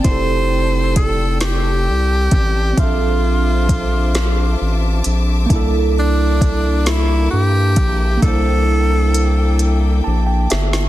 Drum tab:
HH |x---x-x---x-|x---x-x---x-|x---x-x---x-|x---x-x---x-|
SD |------o-----|------o-----|------o-----|----------oo|
BD |o---o-----o-|o---o-------|o---o-----o-|o-----------|